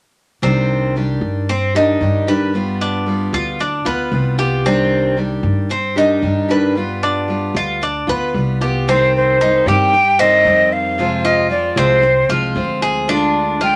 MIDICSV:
0, 0, Header, 1, 6, 480
1, 0, Start_track
1, 0, Key_signature, -3, "minor"
1, 0, Tempo, 527241
1, 391, Time_signature, 4, 2, 24, 8
1, 12525, End_track
2, 0, Start_track
2, 0, Title_t, "Flute"
2, 0, Program_c, 0, 73
2, 8091, Note_on_c, 0, 72, 87
2, 8308, Note_off_c, 0, 72, 0
2, 8342, Note_on_c, 0, 72, 85
2, 8810, Note_on_c, 0, 79, 101
2, 8824, Note_off_c, 0, 72, 0
2, 9284, Note_on_c, 0, 75, 93
2, 9298, Note_off_c, 0, 79, 0
2, 9764, Note_on_c, 0, 77, 85
2, 9778, Note_off_c, 0, 75, 0
2, 10239, Note_on_c, 0, 75, 78
2, 10252, Note_off_c, 0, 77, 0
2, 10470, Note_off_c, 0, 75, 0
2, 10475, Note_on_c, 0, 74, 78
2, 10720, Note_on_c, 0, 72, 75
2, 10734, Note_off_c, 0, 74, 0
2, 11196, Note_off_c, 0, 72, 0
2, 12413, Note_on_c, 0, 79, 95
2, 12525, Note_off_c, 0, 79, 0
2, 12525, End_track
3, 0, Start_track
3, 0, Title_t, "Cuban tres"
3, 0, Program_c, 1, 25
3, 392, Note_on_c, 1, 60, 58
3, 858, Note_off_c, 1, 60, 0
3, 1358, Note_on_c, 1, 60, 62
3, 1589, Note_off_c, 1, 60, 0
3, 1602, Note_on_c, 1, 63, 62
3, 2064, Note_off_c, 1, 63, 0
3, 2078, Note_on_c, 1, 71, 57
3, 2542, Note_off_c, 1, 71, 0
3, 2561, Note_on_c, 1, 62, 59
3, 3024, Note_off_c, 1, 62, 0
3, 3040, Note_on_c, 1, 65, 62
3, 3271, Note_off_c, 1, 65, 0
3, 3281, Note_on_c, 1, 62, 57
3, 3512, Note_off_c, 1, 62, 0
3, 3516, Note_on_c, 1, 71, 63
3, 3982, Note_off_c, 1, 71, 0
3, 3993, Note_on_c, 1, 67, 60
3, 4228, Note_off_c, 1, 67, 0
3, 4242, Note_on_c, 1, 60, 65
3, 4705, Note_off_c, 1, 60, 0
3, 5198, Note_on_c, 1, 60, 61
3, 5430, Note_off_c, 1, 60, 0
3, 5442, Note_on_c, 1, 63, 60
3, 5905, Note_off_c, 1, 63, 0
3, 5924, Note_on_c, 1, 71, 55
3, 6387, Note_off_c, 1, 71, 0
3, 6400, Note_on_c, 1, 62, 60
3, 6865, Note_off_c, 1, 62, 0
3, 6887, Note_on_c, 1, 65, 64
3, 7115, Note_off_c, 1, 65, 0
3, 7126, Note_on_c, 1, 62, 59
3, 7355, Note_off_c, 1, 62, 0
3, 7368, Note_on_c, 1, 71, 64
3, 7828, Note_off_c, 1, 71, 0
3, 7843, Note_on_c, 1, 67, 55
3, 8073, Note_off_c, 1, 67, 0
3, 8091, Note_on_c, 1, 60, 66
3, 8549, Note_off_c, 1, 60, 0
3, 8567, Note_on_c, 1, 63, 61
3, 8795, Note_off_c, 1, 63, 0
3, 8815, Note_on_c, 1, 67, 62
3, 9271, Note_off_c, 1, 67, 0
3, 9279, Note_on_c, 1, 60, 77
3, 9742, Note_off_c, 1, 60, 0
3, 10240, Note_on_c, 1, 65, 67
3, 10702, Note_off_c, 1, 65, 0
3, 10719, Note_on_c, 1, 60, 80
3, 11181, Note_off_c, 1, 60, 0
3, 11194, Note_on_c, 1, 65, 68
3, 11658, Note_off_c, 1, 65, 0
3, 11674, Note_on_c, 1, 68, 66
3, 11905, Note_off_c, 1, 68, 0
3, 11916, Note_on_c, 1, 62, 73
3, 12378, Note_off_c, 1, 62, 0
3, 12389, Note_on_c, 1, 65, 62
3, 12525, Note_off_c, 1, 65, 0
3, 12525, End_track
4, 0, Start_track
4, 0, Title_t, "Steel-string acoustic guitar"
4, 0, Program_c, 2, 25
4, 384, Note_on_c, 2, 48, 62
4, 391, Note_on_c, 2, 51, 57
4, 394, Note_on_c, 2, 55, 60
4, 398, Note_on_c, 2, 62, 63
4, 401, Note_on_c, 2, 67, 63
4, 859, Note_off_c, 2, 48, 0
4, 859, Note_off_c, 2, 51, 0
4, 864, Note_off_c, 2, 55, 0
4, 866, Note_off_c, 2, 62, 0
4, 867, Note_off_c, 2, 67, 0
4, 870, Note_on_c, 2, 51, 39
4, 875, Note_on_c, 2, 55, 44
4, 879, Note_on_c, 2, 62, 46
4, 885, Note_on_c, 2, 67, 46
4, 1342, Note_off_c, 2, 51, 0
4, 1345, Note_off_c, 2, 55, 0
4, 1347, Note_off_c, 2, 62, 0
4, 1350, Note_off_c, 2, 67, 0
4, 1591, Note_on_c, 2, 67, 59
4, 1596, Note_on_c, 2, 62, 57
4, 1601, Note_on_c, 2, 55, 45
4, 1610, Note_on_c, 2, 51, 49
4, 1817, Note_off_c, 2, 51, 0
4, 1823, Note_off_c, 2, 55, 0
4, 1823, Note_off_c, 2, 67, 0
4, 1825, Note_off_c, 2, 62, 0
4, 1827, Note_on_c, 2, 51, 45
4, 1834, Note_on_c, 2, 55, 45
4, 1842, Note_on_c, 2, 62, 45
4, 1846, Note_on_c, 2, 67, 47
4, 2057, Note_off_c, 2, 67, 0
4, 2061, Note_off_c, 2, 51, 0
4, 2064, Note_off_c, 2, 62, 0
4, 2065, Note_off_c, 2, 55, 0
4, 2068, Note_on_c, 2, 67, 56
4, 2075, Note_on_c, 2, 62, 60
4, 2080, Note_on_c, 2, 55, 54
4, 2086, Note_on_c, 2, 51, 48
4, 2300, Note_off_c, 2, 55, 0
4, 2301, Note_off_c, 2, 67, 0
4, 2305, Note_off_c, 2, 62, 0
4, 2310, Note_off_c, 2, 51, 0
4, 2311, Note_on_c, 2, 55, 61
4, 2321, Note_on_c, 2, 59, 68
4, 2328, Note_on_c, 2, 65, 66
4, 2777, Note_off_c, 2, 55, 0
4, 2788, Note_off_c, 2, 59, 0
4, 2788, Note_on_c, 2, 55, 42
4, 2792, Note_off_c, 2, 65, 0
4, 2800, Note_on_c, 2, 59, 45
4, 2810, Note_on_c, 2, 65, 53
4, 3258, Note_off_c, 2, 55, 0
4, 3269, Note_off_c, 2, 59, 0
4, 3273, Note_off_c, 2, 65, 0
4, 3504, Note_on_c, 2, 65, 60
4, 3521, Note_on_c, 2, 59, 48
4, 3740, Note_off_c, 2, 65, 0
4, 3744, Note_on_c, 2, 55, 45
4, 3745, Note_off_c, 2, 59, 0
4, 3756, Note_on_c, 2, 59, 51
4, 3765, Note_on_c, 2, 65, 50
4, 3974, Note_off_c, 2, 65, 0
4, 3981, Note_off_c, 2, 55, 0
4, 3985, Note_on_c, 2, 65, 58
4, 3987, Note_off_c, 2, 59, 0
4, 4007, Note_on_c, 2, 59, 52
4, 4221, Note_off_c, 2, 65, 0
4, 4230, Note_on_c, 2, 48, 59
4, 4232, Note_off_c, 2, 59, 0
4, 4235, Note_on_c, 2, 51, 59
4, 4241, Note_on_c, 2, 55, 67
4, 4243, Note_on_c, 2, 62, 73
4, 4249, Note_on_c, 2, 67, 70
4, 4693, Note_off_c, 2, 51, 0
4, 4700, Note_off_c, 2, 55, 0
4, 4704, Note_off_c, 2, 48, 0
4, 4704, Note_on_c, 2, 51, 45
4, 4705, Note_off_c, 2, 62, 0
4, 4711, Note_on_c, 2, 55, 45
4, 4713, Note_off_c, 2, 67, 0
4, 4716, Note_on_c, 2, 62, 50
4, 4723, Note_on_c, 2, 67, 50
4, 5179, Note_off_c, 2, 51, 0
4, 5179, Note_off_c, 2, 62, 0
4, 5180, Note_off_c, 2, 55, 0
4, 5182, Note_off_c, 2, 67, 0
4, 5425, Note_on_c, 2, 67, 53
4, 5430, Note_on_c, 2, 62, 58
4, 5436, Note_on_c, 2, 55, 53
4, 5442, Note_on_c, 2, 51, 46
4, 5651, Note_off_c, 2, 51, 0
4, 5657, Note_off_c, 2, 55, 0
4, 5662, Note_off_c, 2, 67, 0
4, 5662, Note_on_c, 2, 51, 47
4, 5664, Note_off_c, 2, 62, 0
4, 5668, Note_on_c, 2, 55, 47
4, 5675, Note_on_c, 2, 62, 50
4, 5683, Note_on_c, 2, 67, 50
4, 5892, Note_off_c, 2, 67, 0
4, 5900, Note_off_c, 2, 51, 0
4, 5900, Note_off_c, 2, 62, 0
4, 5903, Note_off_c, 2, 55, 0
4, 5903, Note_on_c, 2, 67, 60
4, 5911, Note_on_c, 2, 62, 55
4, 5918, Note_on_c, 2, 55, 56
4, 5920, Note_on_c, 2, 51, 54
4, 6138, Note_off_c, 2, 55, 0
4, 6141, Note_off_c, 2, 67, 0
4, 6145, Note_off_c, 2, 62, 0
4, 6149, Note_off_c, 2, 51, 0
4, 6149, Note_on_c, 2, 55, 57
4, 6161, Note_on_c, 2, 59, 62
4, 6168, Note_on_c, 2, 65, 71
4, 6616, Note_off_c, 2, 55, 0
4, 6627, Note_on_c, 2, 55, 42
4, 6630, Note_off_c, 2, 59, 0
4, 6633, Note_off_c, 2, 65, 0
4, 6639, Note_on_c, 2, 59, 47
4, 6646, Note_on_c, 2, 65, 50
4, 7101, Note_off_c, 2, 55, 0
4, 7104, Note_off_c, 2, 59, 0
4, 7107, Note_off_c, 2, 65, 0
4, 7347, Note_on_c, 2, 65, 59
4, 7367, Note_on_c, 2, 59, 51
4, 7583, Note_off_c, 2, 65, 0
4, 7593, Note_off_c, 2, 59, 0
4, 7598, Note_on_c, 2, 55, 41
4, 7609, Note_on_c, 2, 59, 50
4, 7618, Note_on_c, 2, 65, 47
4, 7825, Note_off_c, 2, 65, 0
4, 7828, Note_off_c, 2, 55, 0
4, 7834, Note_off_c, 2, 59, 0
4, 7836, Note_on_c, 2, 65, 60
4, 7856, Note_on_c, 2, 59, 48
4, 8067, Note_off_c, 2, 65, 0
4, 8077, Note_off_c, 2, 59, 0
4, 8080, Note_on_c, 2, 48, 63
4, 8083, Note_on_c, 2, 51, 68
4, 8085, Note_on_c, 2, 55, 64
4, 8091, Note_on_c, 2, 60, 68
4, 8096, Note_on_c, 2, 67, 73
4, 8548, Note_off_c, 2, 48, 0
4, 8550, Note_off_c, 2, 51, 0
4, 8551, Note_off_c, 2, 55, 0
4, 8554, Note_off_c, 2, 60, 0
4, 8556, Note_off_c, 2, 67, 0
4, 8560, Note_on_c, 2, 51, 47
4, 8567, Note_on_c, 2, 55, 46
4, 8571, Note_on_c, 2, 60, 52
4, 8576, Note_on_c, 2, 67, 51
4, 8789, Note_off_c, 2, 51, 0
4, 8792, Note_off_c, 2, 55, 0
4, 8793, Note_off_c, 2, 67, 0
4, 8794, Note_off_c, 2, 60, 0
4, 8804, Note_on_c, 2, 67, 62
4, 8809, Note_on_c, 2, 60, 57
4, 8816, Note_on_c, 2, 55, 55
4, 8822, Note_on_c, 2, 51, 49
4, 9030, Note_off_c, 2, 67, 0
4, 9032, Note_off_c, 2, 51, 0
4, 9033, Note_off_c, 2, 60, 0
4, 9037, Note_off_c, 2, 55, 0
4, 9278, Note_on_c, 2, 67, 56
4, 9288, Note_on_c, 2, 60, 62
4, 9290, Note_on_c, 2, 55, 58
4, 9300, Note_on_c, 2, 51, 50
4, 9507, Note_off_c, 2, 51, 0
4, 9507, Note_off_c, 2, 67, 0
4, 9510, Note_off_c, 2, 55, 0
4, 9512, Note_off_c, 2, 60, 0
4, 9518, Note_on_c, 2, 51, 47
4, 9521, Note_on_c, 2, 55, 51
4, 9528, Note_on_c, 2, 60, 56
4, 9531, Note_on_c, 2, 67, 55
4, 9986, Note_off_c, 2, 51, 0
4, 9988, Note_off_c, 2, 55, 0
4, 9992, Note_off_c, 2, 60, 0
4, 9993, Note_off_c, 2, 67, 0
4, 9996, Note_on_c, 2, 48, 61
4, 10002, Note_on_c, 2, 53, 65
4, 10006, Note_on_c, 2, 56, 76
4, 10009, Note_on_c, 2, 60, 74
4, 10015, Note_on_c, 2, 65, 72
4, 10455, Note_off_c, 2, 53, 0
4, 10462, Note_off_c, 2, 56, 0
4, 10465, Note_off_c, 2, 48, 0
4, 10465, Note_off_c, 2, 60, 0
4, 10466, Note_on_c, 2, 53, 47
4, 10472, Note_off_c, 2, 65, 0
4, 10473, Note_on_c, 2, 56, 47
4, 10476, Note_on_c, 2, 60, 49
4, 10482, Note_on_c, 2, 65, 54
4, 10700, Note_off_c, 2, 53, 0
4, 10704, Note_off_c, 2, 56, 0
4, 10704, Note_off_c, 2, 65, 0
4, 10705, Note_off_c, 2, 60, 0
4, 10715, Note_on_c, 2, 65, 61
4, 10720, Note_on_c, 2, 60, 62
4, 10725, Note_on_c, 2, 56, 56
4, 10729, Note_on_c, 2, 53, 49
4, 10940, Note_off_c, 2, 53, 0
4, 10941, Note_off_c, 2, 65, 0
4, 10942, Note_off_c, 2, 56, 0
4, 10943, Note_off_c, 2, 60, 0
4, 11189, Note_on_c, 2, 65, 61
4, 11195, Note_on_c, 2, 60, 61
4, 11201, Note_on_c, 2, 56, 60
4, 11209, Note_on_c, 2, 53, 55
4, 11412, Note_off_c, 2, 53, 0
4, 11417, Note_off_c, 2, 56, 0
4, 11421, Note_off_c, 2, 65, 0
4, 11422, Note_off_c, 2, 60, 0
4, 11423, Note_on_c, 2, 53, 45
4, 11427, Note_on_c, 2, 56, 51
4, 11433, Note_on_c, 2, 60, 52
4, 11440, Note_on_c, 2, 65, 56
4, 11897, Note_off_c, 2, 53, 0
4, 11899, Note_off_c, 2, 56, 0
4, 11902, Note_off_c, 2, 60, 0
4, 11905, Note_off_c, 2, 65, 0
4, 11906, Note_on_c, 2, 50, 61
4, 11916, Note_on_c, 2, 56, 76
4, 11924, Note_on_c, 2, 62, 70
4, 11927, Note_on_c, 2, 65, 69
4, 12370, Note_off_c, 2, 50, 0
4, 12377, Note_off_c, 2, 56, 0
4, 12381, Note_on_c, 2, 50, 45
4, 12387, Note_off_c, 2, 62, 0
4, 12388, Note_off_c, 2, 65, 0
4, 12388, Note_on_c, 2, 56, 50
4, 12397, Note_on_c, 2, 62, 46
4, 12402, Note_on_c, 2, 65, 54
4, 12525, Note_off_c, 2, 50, 0
4, 12525, Note_off_c, 2, 56, 0
4, 12525, Note_off_c, 2, 62, 0
4, 12525, Note_off_c, 2, 65, 0
4, 12525, End_track
5, 0, Start_track
5, 0, Title_t, "Upright bass"
5, 0, Program_c, 3, 32
5, 386, Note_on_c, 3, 36, 74
5, 1073, Note_off_c, 3, 36, 0
5, 1103, Note_on_c, 3, 43, 75
5, 1792, Note_off_c, 3, 43, 0
5, 1827, Note_on_c, 3, 43, 75
5, 2972, Note_off_c, 3, 43, 0
5, 3028, Note_on_c, 3, 38, 76
5, 3478, Note_off_c, 3, 38, 0
5, 3511, Note_on_c, 3, 38, 54
5, 3736, Note_off_c, 3, 38, 0
5, 3748, Note_on_c, 3, 36, 76
5, 4892, Note_off_c, 3, 36, 0
5, 4945, Note_on_c, 3, 43, 83
5, 5635, Note_off_c, 3, 43, 0
5, 5668, Note_on_c, 3, 43, 79
5, 6813, Note_off_c, 3, 43, 0
5, 6869, Note_on_c, 3, 38, 79
5, 7320, Note_off_c, 3, 38, 0
5, 7357, Note_on_c, 3, 38, 61
5, 7580, Note_off_c, 3, 38, 0
5, 7596, Note_on_c, 3, 36, 72
5, 8735, Note_off_c, 3, 36, 0
5, 8794, Note_on_c, 3, 43, 83
5, 9478, Note_off_c, 3, 43, 0
5, 9512, Note_on_c, 3, 41, 77
5, 10651, Note_off_c, 3, 41, 0
5, 10706, Note_on_c, 3, 36, 82
5, 11155, Note_off_c, 3, 36, 0
5, 11188, Note_on_c, 3, 36, 58
5, 11413, Note_off_c, 3, 36, 0
5, 11431, Note_on_c, 3, 38, 82
5, 12525, Note_off_c, 3, 38, 0
5, 12525, End_track
6, 0, Start_track
6, 0, Title_t, "Muted steel-string acoustic guitar strokes"
6, 1358, Note_on_c, 9, 29, 49
6, 1449, Note_off_c, 9, 29, 0
6, 3269, Note_on_c, 9, 29, 51
6, 3360, Note_off_c, 9, 29, 0
6, 5184, Note_on_c, 9, 29, 51
6, 5275, Note_off_c, 9, 29, 0
6, 7111, Note_on_c, 9, 29, 54
6, 7203, Note_off_c, 9, 29, 0
6, 9043, Note_on_c, 9, 29, 57
6, 9134, Note_off_c, 9, 29, 0
6, 10944, Note_on_c, 9, 29, 51
6, 11035, Note_off_c, 9, 29, 0
6, 12525, End_track
0, 0, End_of_file